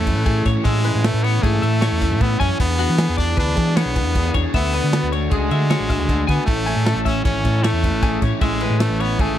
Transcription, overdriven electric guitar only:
Already playing: E3
0.06 A3 C#4 E4
0.25 A2 E3 A3 C#4 E4
0.45 A3 C#4 E4
0.64 A2 E3 A3 C#4 E4
0.85 A3 C#4 E4
1.04 E3 A3 C#4 E4
1.42 A2 E3 A3 C#4 E4
1.62 A3 C#4 E4
1.80 E3 A3 C#4 E4
2.00 A3 C#4 E4
2.20 A2 E3 A3 C#4 E4
2.39 A3 C#4 E4
2.59 E3 B3 D4 G#4
2.79 B3 D4 G#4
2.97 E3 B3 D4 G#4
3.37 E3 B3 D4 G#4
3.56 B3 D4 G#4
3.76 E3 B3 D4 G#4
3.95 B3 D4 G#4
4.15 E3 B3 D4 G#4
4.34 B3 D4 G#4
4.53 D3 A3 D4 F#4
4.72 A3 D4 F#4
4.92 D3 A3 D4 F#4
5.30 D3 A3 D4 F#4
5.50 A3 D4 F#4
5.69 D3 A3 D4 F#4
5.88 A3 D4 F#4
6.07 D3 A3 D4 F#4
6.27 A3 D4 F#4
6.46 A2 E3 A3 C#4 E4
6.66 A3 C#4 E4
6.85 E3 A3 C#4 E4
7.23 A2 E3 A3 C#4 E4
7.43 A3 C#4 E4
7.62 E3 A3 C#4 E4
7.82 A3 C#4 E4
8.01 A2 E3 A3 C#4 E4
8.21 A3 C#4 E4
8.40 A2 E3 A3 C#4 E4
8.60 A3 C#4 E4
8.79 E3 A3 C#4 E4
9.18 A2 E3 A3 C#4 E4

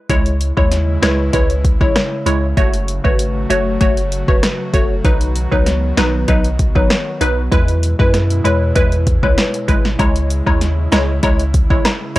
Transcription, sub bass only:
0.10 C#2
0.57 D#2
1.02 C#2
1.34 C#2
1.81 A1
2.26 C#2
2.57 F#1
3.05 G#1
3.50 F#1
3.81 F#1
4.28 E1
4.74 F#1
5.05 B1
5.52 C#2
5.97 B1
6.28 B1
6.76 G#1
7.21 B1
7.52 E2
8.00 F#2
8.45 E2
8.76 E2
9.23 C#2
9.68 G#1
9.99 C#2
10.47 D#2
10.92 C#2
11.23 C#2
11.70 A1

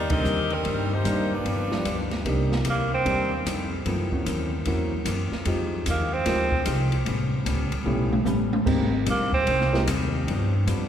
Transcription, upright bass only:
0.00 D#2
0.12 C2
0.25 D#2
0.66 G2
1.05 A#1
1.45 G1
1.86 D2
2.25 C2
2.66 D2
3.06 D#2
3.46 F2
3.86 F#2
4.26 D#2
4.66 E2
5.05 F#2
5.32 muted upright bass stroke
5.46 F2
5.87 D#2
6.26 D2
6.67 C2
7.07 A1
7.46 C#2
7.72 muted upright bass stroke
7.85 B1
8.25 A1
8.66 G#1
9.06 A#1
9.47 C2
9.87 D#2
10.27 G2
10.67 F2

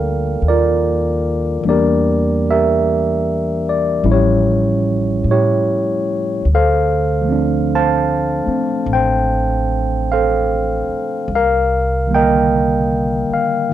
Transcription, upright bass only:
Already playing: D2
0.42 D#2
1.64 E2
4.04 A1
5.24 A2
6.45 D2
8.47 muted upright bass stroke
8.86 A1
10.88 muted upright bass stroke
11.28 C2
13.30 muted upright bass stroke

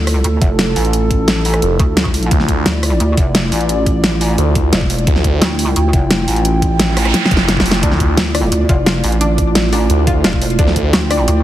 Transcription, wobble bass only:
Already playing: D2
0.24 D2
0.42 F1
0.76 A1
1.79 D2
2.66 D2
3.00 D2
3.17 F1
3.52 A1
4.73 E1
5.42 D2
5.76 D2
5.93 F1
6.28 A1
8.17 D2
8.52 D2
8.69 F1
9.04 A1
10.24 E1
10.93 D2
11.28 D2

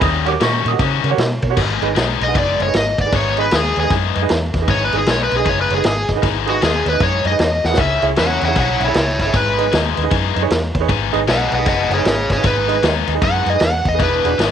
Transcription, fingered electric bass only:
0.02 D#2
0.41 A#2
0.65 A#2
0.79 C#3
1.04 C#3
1.18 B2
1.43 B2
1.57 G#1
1.81 G#1
1.96 B1
2.21 B1
2.35 F#1
2.60 F#1
2.74 G#1
2.98 G#1
3.13 G#1
3.52 D#2
3.77 D#2
3.90 F#2
4.16 F#2
4.30 E2
4.54 E2
4.68 G#1
4.93 G#1
5.07 B1
5.32 B1
5.46 F#1
5.71 F#1
5.85 G#1
6.09 G#1
6.23 G#1
6.62 D#2
6.86 D#2
7.00 F#2
7.25 F#2
7.39 E2
7.64 E2
7.78 C#2
8.03 C#2
8.18 E2
8.42 E2
8.56 B1
8.80 B1
8.95 C#2
9.20 G1
9.34 G#1
9.73 D#2
9.97 D#2
10.11 F#2
10.36 F#2
10.50 E2
10.75 E2
10.89 G#1
11.14 G#1
11.28 B1
11.52 B1
11.66 F#1
11.90 F#1
12.05 G#1
12.30 G#1
12.44 G#1
12.83 D#2
13.07 D#2
13.22 F#2
13.46 F#2
13.61 E2
13.85 E2
14.00 E1
14.24 E1
14.38 G#1

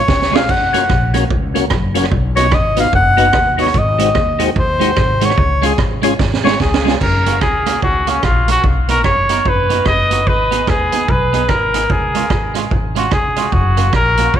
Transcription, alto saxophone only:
Already playing: C#5
0.36 F5
0.51 F#5
2.36 C#5
2.54 D#5
2.80 F5
2.95 F#5
3.61 C#5
3.78 D#5
4.59 C5
5.26 C#5
5.66 G#4
6.45 C#5
6.61 G#4

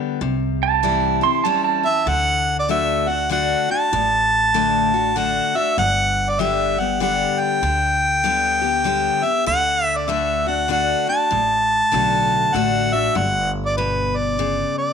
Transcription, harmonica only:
1.85 E5
2.09 F#5
2.59 D5
2.70 E5
3.08 F#5
3.32 F#5
3.71 A5
5.17 F#5
5.57 E5
5.78 F#5
6.29 D5
6.40 E5
6.79 F#5
7.02 F#5
7.40 G5
9.24 E5
9.47 F#5
9.85 E5
9.96 D5
10.10 E5
10.47 F#5
10.71 F#5
11.09 A5
12.54 F#5
12.93 E5
13.16 F#5
13.65 D5
13.77 B4
14.17 D5
14.78 D5

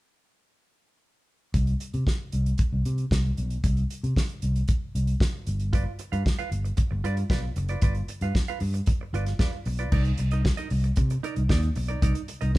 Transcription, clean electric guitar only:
5.73 F4 B4 D5
5.86 muted clean electric guitar stroke
6.00 muted clean electric guitar stroke
6.12 F4 B4 F5
6.25 muted clean electric guitar stroke
6.39 F4 B4 F5
6.51 muted clean electric guitar stroke
6.65 muted clean electric guitar stroke
6.77 muted clean electric guitar stroke
6.91 muted clean electric guitar stroke
7.04 F4 B4 D5
7.18 muted clean electric guitar stroke
7.30 F4 B4 D5
7.43 muted clean electric guitar stroke
7.57 muted clean electric guitar stroke
7.69 F4 B4 D5
7.82 F4 B4 D5
7.96 muted clean electric guitar stroke
8.09 muted clean electric guitar stroke
8.22 F4 B4 F5
8.36 muted clean electric guitar stroke
8.48 F4 B4 F5
8.61 muted clean electric guitar stroke
8.74 muted clean electric guitar stroke
8.88 muted clean electric guitar stroke
9.01 muted clean electric guitar stroke
9.14 F4 B4 D5
9.27 muted clean electric guitar stroke
9.39 F4 B4 D5
9.53 muted clean electric guitar stroke
9.66 muted clean electric guitar stroke
9.79 F4 B4 D5
9.92 D#4 A#4 D5
10.05 muted clean electric guitar stroke
10.19 muted clean electric guitar stroke
10.32 D#4 A#4 D#5
10.44 muted clean electric guitar stroke
10.57 D#4 A#4 D#5
10.71 muted clean electric guitar stroke
10.84 muted clean electric guitar stroke
10.97 muted clean electric guitar stroke
11.11 muted clean electric guitar stroke
11.23 D#4 A#4 D5
11.37 muted clean electric guitar stroke
11.49 D#4 A#4 D5
11.63 muted clean electric guitar stroke
11.76 muted clean electric guitar stroke
11.88 D#4 A#4 D5
12.02 D#4 A#4 D5
12.15 muted clean electric guitar stroke
12.28 muted clean electric guitar stroke
12.41 D#4 A#4 D#5
12.54 muted clean electric guitar stroke

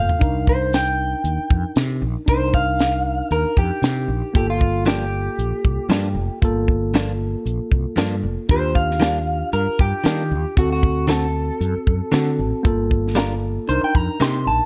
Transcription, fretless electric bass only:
0.21 C2
1.24 D#2
1.39 muted fretless electric bass stroke
1.51 F2
1.76 C3
2.02 A#1
2.28 C2
3.31 D#2
3.45 muted fretless electric bass stroke
3.57 F2
3.82 C3
4.08 A#1
4.35 G1
5.39 A#1
5.52 muted fretless electric bass stroke
5.65 C2
5.89 G2
6.14 F1
6.42 G1
7.46 A#1
7.72 C2
7.97 G2
8.23 F1
8.49 D#2
9.53 G2
9.68 muted fretless electric bass stroke
9.79 G2
10.06 D#3
10.31 D#2
10.57 D2
11.60 F#2
11.76 muted fretless electric bass stroke
11.87 F#2
12.13 D3
12.39 A1
12.65 G1
13.69 C2
13.95 F2
14.20 C3
14.46 A#1

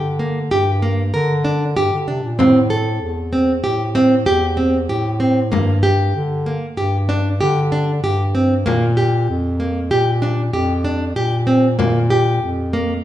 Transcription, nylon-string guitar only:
0.19 A#3
0.51 G4
0.82 A#3
1.14 A#4
1.45 D4
1.77 G4
2.08 D4
2.39 C4
2.70 A4
3.33 C4
3.64 G4
3.95 C4
4.26 G4
4.57 C4
4.89 G4
5.20 C4
5.52 A#3
5.83 G4
6.46 A#3
6.77 G4
7.09 D4
7.41 G4
7.72 D4
8.04 G4
8.35 C4
8.66 A#3
8.97 G4
9.60 A#3
9.91 G4
10.22 D4
10.53 G4
10.85 D4
11.16 G4
11.47 C4
11.79 A#3
12.10 G4
12.73 A#3

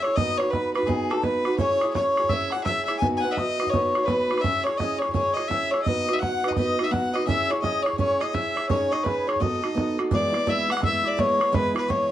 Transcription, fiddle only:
0.03 C#5
0.16 D#5
0.37 C#5
0.50 B4
0.73 B4
0.87 G#4
1.10 A4
1.23 B4
1.59 C#5
1.94 C#5
2.29 E5
2.52 F#5
2.64 E5
2.85 E5
2.98 G#5
3.17 F#5 G#5
3.31 D#5 E5
3.67 C#5 D#5
4.03 B4 C#5
4.41 E5
4.64 C#5
4.78 D#5
4.99 C#5
5.12 C#5
5.34 D#5
5.48 E5
5.71 C#5
5.82 D#5
6.13 E5
6.19 F#5
6.48 D#5
6.55 D#5
6.84 E5
6.92 F#5
7.13 D#5
7.27 E5
7.50 C#5
7.62 D#5
7.83 C#5
7.97 C#5
8.21 D#5
8.34 E5
8.69 C#5
8.92 D#5
9.04 B4
9.27 C#5
9.40 D#5
10.14 D5
10.50 E5
10.72 F#5
10.85 E5
11.07 D5
11.20 C#5
11.55 B4
11.77 B4
11.90 C#5

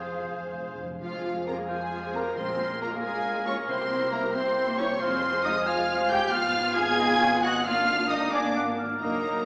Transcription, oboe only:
Already playing: C5
1.68 C5
2.37 A#4
4.35 G5
5.01 F5
5.67 G#5
6.31 F5
6.99 D#5
7.22 C#5
7.45 D#5
7.66 F5
8.34 G#5
8.57 F#5
8.78 F5
9.01 D#5

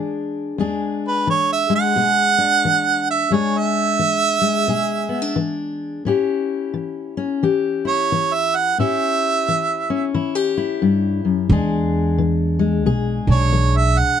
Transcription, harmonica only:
1.08 B4
1.30 C#5
1.53 E5
1.76 F#5
3.10 E5
3.33 C#5
3.58 E5
7.88 C#5
8.34 E5
8.56 F#5
8.79 E5
13.31 C#5
13.77 E5
13.98 F#5

